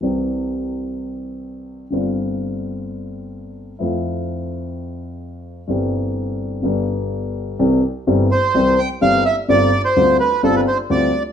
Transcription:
X:1
M:4/4
L:1/16
Q:1/4=127
K:C
V:1 name="Bandoneon"
z16 | z16 | z16 | z16 |
z6 c4 g2 f2 e2 | d3 c3 B2 A B c2 d3 z |]
V:2 name="Grand piano" clef=bass
[C,,C,E,G,CG]16 | [G,,,G,,D,G,CF]16 | [F,,F,A,CEF]16 | [G,,,G,,E,G,CG]8 [G,,,G,,D,G,B,G]8 |
[C,,C,E,G,CG]2 z2 [G,,,G,,E,G,CG]2 z2 [C,,C,E,G,CG]2 z2 [G,,,G,,E,G,CG]2 z2 | [G,,,G,,D,G,CF]2 z2 [D,,D,G,CF]2 z2 [G,,,G,,D,G,CF]2 z2 [D,,D,G,CF]2 z2 |]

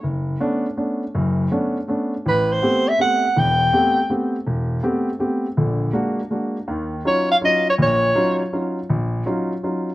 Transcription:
X:1
M:3/4
L:1/8
Q:"Swing" 1/4=162
K:Ador
V:1 name="Soprano saxophone"
z6 | z6 | B c2 e f2 | g4 z2 |
z6 | z6 | [K:Ebm] z2 d f e d | d4 z2 |
z6 |]
V:2 name="Grand piano"
F,,,2 [A,B,^CD] z [A,B,CD] z | [F,,,F,,]2 [A,B,^CD] z [A,B,CD] z | A,,,2 [A,B,CG] z [A,B,CG] z | [E,,,E,,]2 [A,B,CG] z [A,B,CG] z |
E,,,2 [A,B,CG] z [A,B,CG] z | [^A,,,D,]2 [^G,^A,DF] z [G,A,DF] z | [K:Ebm] [E,,E,]2 [G,DEF] z [G,DEF] z | [B,,,B,,]2 [G,DEF] z [G,DEF] z |
B,,,2 [G,DEF] z [G,DEF] z |]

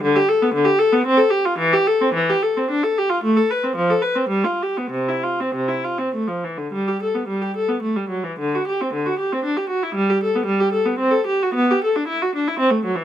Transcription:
X:1
M:3/4
L:1/16
Q:1/4=112
K:C
V:1 name="Viola"
D, G A B, D, G A B, C A G F | E, G A C E, G A C D A G F | A, A B C F, A B C G, F G B, | C, E F C C, E F C A, F, E, D, |
[K:G] G, G A B, G, G A B, A, G, F, E, | D, F G C D, F G C D G F E | G, G A B, G, G A B, C A G F | B, G A D E F D E C A, F, E, |]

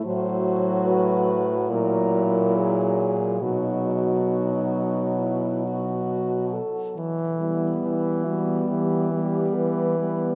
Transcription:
X:1
M:4/4
L:1/8
Q:1/4=69
K:Em
V:1 name="French horn"
c2 B2 ^A2 ^G2 | F6 z2 | z E2 F G2 B2 |]
V:2 name="French horn"
F4 E4 | ^D2 D2 E F2 A | z B,2 B,2 B,2 B, |]
V:3 name="French horn" clef=bass
F,4 F,4 | F,6- F, z | z G,2 G,2 G,2 G, |]
V:4 name="French horn" clef=bass
A,,4 ^A,,4 | B,,6- B,, z | E,2 E,2 E,2 E,2 |]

